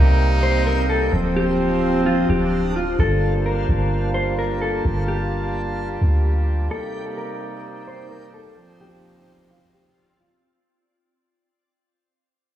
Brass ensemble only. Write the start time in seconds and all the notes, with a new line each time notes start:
Already playing: C3 G3 A#3 D#4
1.13 F3 C4
2.99 G3 A#3 D4 F4 A5
6.71 C3 A#3 D#4 D5
8.57 F3 C4